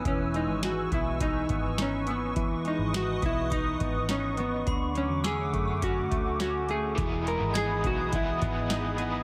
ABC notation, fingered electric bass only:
X:1
M:4/4
L:1/16
Q:1/4=104
K:E
V:1 name="Fingered electric bass" clef=bass
E,,,3 G,,,3 B,,,4 G,,,6 | E,,,3 G,,,3 B,,,4 G,,,6 | =D,,3 E,,3 F,,4 D,,6 | E,,,3 G,,,3 B,,,4 G,,,6 |]